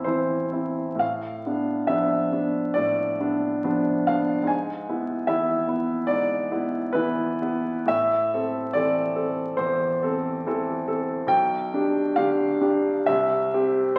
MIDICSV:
0, 0, Header, 1, 2, 480
1, 0, Start_track
1, 0, Key_signature, 0, "minor"
1, 0, Tempo, 952381
1, 508, Time_signature, 4, 2, 24, 8
1, 508, Tempo, 884956
1, 1468, Tempo, 853485
1, 2428, Tempo, 806452
1, 3388, Tempo, 848656
1, 3868, Tempo, 972447
1, 4348, Tempo, 839161
1, 5308, Tempo, 860832
1, 6748, Tempo, 899550
1, 7712, End_track
2, 0, Start_track
2, 0, Title_t, "Grand piano"
2, 0, Program_c, 0, 0
2, 0, Control_c, 0, 64, 127
2, 0, Note_on_c, 0, 40, 37
2, 0, Note_on_c, 0, 52, 32
2, 0, Note_on_c, 0, 60, 34
2, 0, Note_on_c, 0, 64, 36
2, 0, Note_on_c, 0, 76, 54
2, 0, Note_on_c, 0, 77, 63
2, 22, Note_on_c, 0, 72, 60
2, 31, Note_off_c, 0, 52, 0
2, 31, Note_on_c, 0, 52, 36
2, 33, Note_off_c, 0, 60, 0
2, 33, Note_on_c, 0, 60, 38
2, 35, Note_off_c, 0, 64, 0
2, 35, Note_on_c, 0, 64, 35
2, 245, Note_off_c, 0, 52, 0
2, 246, Note_off_c, 0, 60, 0
2, 247, Note_off_c, 0, 64, 0
2, 261, Note_on_c, 0, 60, 36
2, 267, Note_on_c, 0, 64, 35
2, 480, Note_on_c, 0, 45, 41
2, 487, Note_off_c, 0, 60, 0
2, 490, Note_off_c, 0, 64, 0
2, 501, Note_off_c, 0, 77, 0
2, 501, Note_on_c, 0, 77, 59
2, 506, Note_off_c, 0, 72, 0
2, 518, Control_c, 0, 64, 0
2, 519, Note_off_c, 0, 40, 0
2, 521, Note_off_c, 0, 76, 0
2, 610, Control_c, 0, 64, 127
2, 729, Note_off_c, 0, 45, 0
2, 754, Note_on_c, 0, 59, 32
2, 755, Note_on_c, 0, 62, 35
2, 967, Note_off_c, 0, 59, 0
2, 968, Note_off_c, 0, 62, 0
2, 977, Note_on_c, 0, 76, 59
2, 984, Note_off_c, 0, 77, 0
2, 985, Note_on_c, 0, 53, 34
2, 988, Note_on_c, 0, 62, 35
2, 990, Note_on_c, 0, 59, 36
2, 1204, Note_off_c, 0, 53, 0
2, 1206, Note_off_c, 0, 62, 0
2, 1207, Note_off_c, 0, 59, 0
2, 1219, Note_on_c, 0, 59, 33
2, 1226, Note_on_c, 0, 62, 35
2, 1441, Note_off_c, 0, 59, 0
2, 1445, Note_off_c, 0, 62, 0
2, 1447, Note_on_c, 0, 74, 65
2, 1459, Note_on_c, 0, 45, 41
2, 1462, Note_off_c, 0, 76, 0
2, 1701, Note_off_c, 0, 45, 0
2, 1707, Note_on_c, 0, 59, 37
2, 1709, Note_on_c, 0, 62, 37
2, 1929, Note_off_c, 0, 59, 0
2, 1930, Note_off_c, 0, 62, 0
2, 1953, Note_on_c, 0, 53, 40
2, 1953, Note_on_c, 0, 59, 40
2, 1958, Note_on_c, 0, 62, 43
2, 2170, Note_off_c, 0, 53, 0
2, 2170, Note_off_c, 0, 59, 0
2, 2173, Note_off_c, 0, 62, 0
2, 2183, Note_off_c, 0, 74, 0
2, 2195, Note_on_c, 0, 77, 68
2, 2202, Note_on_c, 0, 59, 36
2, 2202, Note_on_c, 0, 62, 39
2, 2399, Note_on_c, 0, 44, 45
2, 2410, Note_off_c, 0, 59, 0
2, 2410, Note_off_c, 0, 62, 0
2, 2421, Note_on_c, 0, 80, 60
2, 2429, Note_off_c, 0, 77, 0
2, 2436, Control_c, 0, 64, 0
2, 2543, Control_c, 0, 64, 127
2, 2645, Note_off_c, 0, 44, 0
2, 2670, Note_on_c, 0, 59, 33
2, 2670, Note_on_c, 0, 64, 37
2, 2880, Note_off_c, 0, 59, 0
2, 2880, Note_off_c, 0, 64, 0
2, 2897, Note_on_c, 0, 76, 60
2, 2899, Note_off_c, 0, 80, 0
2, 2899, Note_on_c, 0, 52, 34
2, 2904, Note_on_c, 0, 59, 35
2, 2905, Note_on_c, 0, 64, 39
2, 3115, Note_off_c, 0, 52, 0
2, 3118, Note_off_c, 0, 59, 0
2, 3119, Note_off_c, 0, 64, 0
2, 3137, Note_on_c, 0, 59, 34
2, 3144, Note_on_c, 0, 64, 39
2, 3362, Note_off_c, 0, 59, 0
2, 3365, Note_off_c, 0, 64, 0
2, 3371, Note_on_c, 0, 74, 65
2, 3379, Note_on_c, 0, 44, 43
2, 3385, Note_off_c, 0, 76, 0
2, 3613, Note_off_c, 0, 44, 0
2, 3624, Note_on_c, 0, 59, 39
2, 3624, Note_on_c, 0, 64, 42
2, 3845, Note_off_c, 0, 59, 0
2, 3845, Note_off_c, 0, 64, 0
2, 3856, Note_on_c, 0, 71, 65
2, 3860, Note_off_c, 0, 74, 0
2, 3865, Note_on_c, 0, 59, 42
2, 3869, Note_on_c, 0, 52, 39
2, 3870, Note_on_c, 0, 64, 45
2, 4083, Note_off_c, 0, 59, 0
2, 4085, Note_off_c, 0, 52, 0
2, 4085, Note_off_c, 0, 64, 0
2, 4101, Note_on_c, 0, 59, 42
2, 4103, Note_on_c, 0, 64, 41
2, 4319, Note_on_c, 0, 45, 47
2, 4327, Note_off_c, 0, 59, 0
2, 4327, Note_off_c, 0, 64, 0
2, 4329, Note_on_c, 0, 76, 71
2, 4343, Note_off_c, 0, 71, 0
2, 4357, Control_c, 0, 64, 0
2, 4446, Control_c, 0, 64, 127
2, 4573, Note_off_c, 0, 45, 0
2, 4590, Note_on_c, 0, 60, 38
2, 4591, Note_on_c, 0, 69, 42
2, 4802, Note_off_c, 0, 60, 0
2, 4802, Note_off_c, 0, 69, 0
2, 4814, Note_on_c, 0, 74, 69
2, 4818, Note_off_c, 0, 76, 0
2, 4824, Note_on_c, 0, 52, 39
2, 4824, Note_on_c, 0, 60, 39
2, 4828, Note_on_c, 0, 69, 41
2, 5038, Note_off_c, 0, 52, 0
2, 5038, Note_off_c, 0, 60, 0
2, 5040, Note_off_c, 0, 69, 0
2, 5055, Note_on_c, 0, 60, 41
2, 5056, Note_on_c, 0, 69, 38
2, 5280, Note_off_c, 0, 60, 0
2, 5281, Note_off_c, 0, 69, 0
2, 5292, Note_on_c, 0, 72, 67
2, 5300, Note_off_c, 0, 74, 0
2, 5303, Note_on_c, 0, 40, 45
2, 5541, Note_off_c, 0, 40, 0
2, 5547, Note_on_c, 0, 60, 44
2, 5553, Note_on_c, 0, 69, 42
2, 5767, Note_off_c, 0, 60, 0
2, 5770, Note_off_c, 0, 69, 0
2, 5791, Note_on_c, 0, 60, 44
2, 5794, Note_on_c, 0, 52, 47
2, 5797, Note_on_c, 0, 69, 49
2, 6006, Note_off_c, 0, 60, 0
2, 6007, Note_off_c, 0, 52, 0
2, 6009, Note_off_c, 0, 69, 0
2, 6018, Note_on_c, 0, 60, 39
2, 6020, Note_off_c, 0, 72, 0
2, 6022, Note_on_c, 0, 69, 47
2, 6238, Note_off_c, 0, 60, 0
2, 6239, Note_on_c, 0, 35, 51
2, 6240, Note_off_c, 0, 69, 0
2, 6247, Note_on_c, 0, 79, 74
2, 6276, Control_c, 0, 64, 0
2, 6376, Control_c, 0, 64, 127
2, 6487, Note_off_c, 0, 35, 0
2, 6502, Note_on_c, 0, 62, 43
2, 6506, Note_on_c, 0, 67, 42
2, 6723, Note_off_c, 0, 62, 0
2, 6725, Note_off_c, 0, 67, 0
2, 6737, Note_on_c, 0, 77, 70
2, 6738, Note_off_c, 0, 79, 0
2, 6743, Note_on_c, 0, 50, 39
2, 6748, Note_on_c, 0, 62, 42
2, 6750, Note_on_c, 0, 67, 47
2, 6957, Note_off_c, 0, 50, 0
2, 6959, Note_off_c, 0, 62, 0
2, 6961, Note_off_c, 0, 67, 0
2, 6979, Note_on_c, 0, 62, 42
2, 6980, Note_on_c, 0, 67, 42
2, 7203, Note_off_c, 0, 62, 0
2, 7203, Note_off_c, 0, 67, 0
2, 7219, Note_off_c, 0, 77, 0
2, 7220, Note_on_c, 0, 76, 75
2, 7230, Note_on_c, 0, 36, 58
2, 7233, Control_c, 0, 64, 0
2, 7317, Control_c, 0, 64, 127
2, 7464, Note_off_c, 0, 36, 0
2, 7469, Note_on_c, 0, 60, 44
2, 7474, Note_on_c, 0, 67, 49
2, 7687, Note_off_c, 0, 60, 0
2, 7690, Note_off_c, 0, 67, 0
2, 7706, Note_off_c, 0, 76, 0
2, 7712, End_track
0, 0, End_of_file